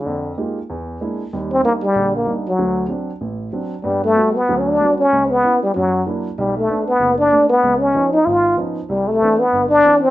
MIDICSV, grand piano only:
0, 0, Header, 1, 2, 480
1, 0, Start_track
1, 0, Tempo, 315623
1, 75, Time_signature, 4, 2, 24, 8
1, 15365, End_track
2, 0, Start_track
2, 0, Title_t, "Grand piano"
2, 0, Program_c, 0, 0
2, 92, Note_on_c, 0, 41, 62
2, 495, Note_off_c, 0, 41, 0
2, 572, Note_on_c, 0, 58, 43
2, 575, Note_on_c, 0, 56, 47
2, 578, Note_on_c, 0, 63, 42
2, 582, Note_on_c, 0, 67, 51
2, 589, Note_on_c, 0, 65, 44
2, 873, Note_off_c, 0, 58, 0
2, 875, Note_off_c, 0, 56, 0
2, 877, Note_off_c, 0, 63, 0
2, 879, Note_off_c, 0, 67, 0
2, 882, Note_off_c, 0, 65, 0
2, 1061, Note_on_c, 0, 40, 63
2, 1461, Note_off_c, 0, 40, 0
2, 1539, Note_on_c, 0, 56, 49
2, 1543, Note_on_c, 0, 64, 54
2, 1548, Note_on_c, 0, 58, 44
2, 1551, Note_on_c, 0, 62, 42
2, 1838, Note_off_c, 0, 56, 0
2, 1840, Note_off_c, 0, 64, 0
2, 1843, Note_off_c, 0, 58, 0
2, 1844, Note_off_c, 0, 62, 0
2, 2022, Note_on_c, 0, 39, 62
2, 2029, Note_on_c, 0, 55, 61
2, 2423, Note_off_c, 0, 39, 0
2, 2427, Note_off_c, 0, 55, 0
2, 2475, Note_on_c, 0, 55, 49
2, 2480, Note_on_c, 0, 62, 42
2, 2494, Note_on_c, 0, 63, 53
2, 2788, Note_off_c, 0, 55, 0
2, 2790, Note_off_c, 0, 62, 0
2, 2797, Note_off_c, 0, 63, 0
2, 2973, Note_on_c, 0, 34, 57
2, 2978, Note_on_c, 0, 50, 60
2, 3380, Note_off_c, 0, 34, 0
2, 3382, Note_off_c, 0, 50, 0
2, 3450, Note_on_c, 0, 55, 49
2, 3450, Note_on_c, 0, 62, 46
2, 3451, Note_on_c, 0, 63, 51
2, 3756, Note_off_c, 0, 55, 0
2, 3756, Note_off_c, 0, 62, 0
2, 3757, Note_off_c, 0, 63, 0
2, 3933, Note_on_c, 0, 38, 61
2, 3933, Note_on_c, 0, 54, 57
2, 4340, Note_off_c, 0, 38, 0
2, 4341, Note_off_c, 0, 54, 0
2, 4388, Note_on_c, 0, 54, 46
2, 4390, Note_on_c, 0, 60, 43
2, 4401, Note_on_c, 0, 62, 52
2, 4706, Note_off_c, 0, 54, 0
2, 4707, Note_off_c, 0, 60, 0
2, 4713, Note_off_c, 0, 62, 0
2, 4879, Note_on_c, 0, 33, 60
2, 5294, Note_off_c, 0, 33, 0
2, 5365, Note_on_c, 0, 54, 46
2, 5366, Note_on_c, 0, 60, 43
2, 5375, Note_on_c, 0, 62, 48
2, 5676, Note_off_c, 0, 54, 0
2, 5676, Note_off_c, 0, 60, 0
2, 5681, Note_off_c, 0, 62, 0
2, 5837, Note_on_c, 0, 59, 65
2, 5838, Note_on_c, 0, 43, 66
2, 6253, Note_off_c, 0, 59, 0
2, 6254, Note_off_c, 0, 43, 0
2, 6320, Note_on_c, 0, 55, 52
2, 6327, Note_on_c, 0, 66, 58
2, 6329, Note_on_c, 0, 59, 46
2, 6634, Note_off_c, 0, 55, 0
2, 6638, Note_off_c, 0, 59, 0
2, 6638, Note_off_c, 0, 66, 0
2, 6828, Note_on_c, 0, 54, 68
2, 6837, Note_on_c, 0, 38, 64
2, 7231, Note_off_c, 0, 54, 0
2, 7236, Note_off_c, 0, 38, 0
2, 7313, Note_on_c, 0, 55, 50
2, 7325, Note_on_c, 0, 59, 46
2, 7331, Note_on_c, 0, 66, 58
2, 7611, Note_off_c, 0, 55, 0
2, 7617, Note_off_c, 0, 59, 0
2, 7620, Note_off_c, 0, 66, 0
2, 7794, Note_on_c, 0, 37, 67
2, 8194, Note_off_c, 0, 37, 0
2, 8266, Note_on_c, 0, 59, 54
2, 8275, Note_on_c, 0, 61, 50
2, 8281, Note_on_c, 0, 64, 57
2, 8567, Note_off_c, 0, 59, 0
2, 8572, Note_off_c, 0, 61, 0
2, 8575, Note_off_c, 0, 64, 0
2, 8758, Note_on_c, 0, 42, 64
2, 9156, Note_off_c, 0, 42, 0
2, 9224, Note_on_c, 0, 58, 48
2, 9227, Note_on_c, 0, 54, 50
2, 9234, Note_on_c, 0, 64, 56
2, 9237, Note_on_c, 0, 62, 50
2, 9526, Note_off_c, 0, 58, 0
2, 9528, Note_off_c, 0, 54, 0
2, 9531, Note_off_c, 0, 64, 0
2, 9533, Note_off_c, 0, 62, 0
2, 9706, Note_on_c, 0, 35, 63
2, 10109, Note_off_c, 0, 35, 0
2, 10176, Note_on_c, 0, 57, 52
2, 10182, Note_on_c, 0, 59, 48
2, 10182, Note_on_c, 0, 62, 58
2, 10482, Note_off_c, 0, 57, 0
2, 10485, Note_off_c, 0, 59, 0
2, 10485, Note_off_c, 0, 62, 0
2, 10640, Note_on_c, 0, 30, 68
2, 11055, Note_off_c, 0, 30, 0
2, 11135, Note_on_c, 0, 57, 52
2, 11139, Note_on_c, 0, 59, 48
2, 11143, Note_on_c, 0, 62, 61
2, 11441, Note_off_c, 0, 57, 0
2, 11443, Note_off_c, 0, 59, 0
2, 11445, Note_off_c, 0, 62, 0
2, 11607, Note_on_c, 0, 37, 67
2, 12018, Note_off_c, 0, 37, 0
2, 12086, Note_on_c, 0, 53, 53
2, 12098, Note_on_c, 0, 59, 46
2, 12098, Note_on_c, 0, 61, 49
2, 12102, Note_on_c, 0, 63, 59
2, 12396, Note_off_c, 0, 53, 0
2, 12402, Note_off_c, 0, 59, 0
2, 12402, Note_off_c, 0, 61, 0
2, 12404, Note_off_c, 0, 63, 0
2, 12567, Note_on_c, 0, 32, 67
2, 12977, Note_off_c, 0, 32, 0
2, 13029, Note_on_c, 0, 59, 48
2, 13041, Note_on_c, 0, 53, 53
2, 13041, Note_on_c, 0, 61, 46
2, 13052, Note_on_c, 0, 63, 58
2, 13346, Note_off_c, 0, 59, 0
2, 13352, Note_off_c, 0, 53, 0
2, 13352, Note_off_c, 0, 61, 0
2, 13357, Note_off_c, 0, 63, 0
2, 13524, Note_on_c, 0, 36, 61
2, 13934, Note_off_c, 0, 36, 0
2, 14020, Note_on_c, 0, 60, 44
2, 14021, Note_on_c, 0, 52, 52
2, 14022, Note_on_c, 0, 59, 49
2, 14030, Note_on_c, 0, 62, 58
2, 14320, Note_off_c, 0, 52, 0
2, 14320, Note_off_c, 0, 60, 0
2, 14321, Note_off_c, 0, 59, 0
2, 14324, Note_off_c, 0, 62, 0
2, 14486, Note_on_c, 0, 31, 66
2, 14893, Note_off_c, 0, 31, 0
2, 14971, Note_on_c, 0, 59, 49
2, 14972, Note_on_c, 0, 52, 56
2, 14984, Note_on_c, 0, 62, 57
2, 14985, Note_on_c, 0, 60, 48
2, 15273, Note_off_c, 0, 59, 0
2, 15274, Note_off_c, 0, 52, 0
2, 15280, Note_off_c, 0, 60, 0
2, 15280, Note_off_c, 0, 62, 0
2, 15365, End_track
0, 0, End_of_file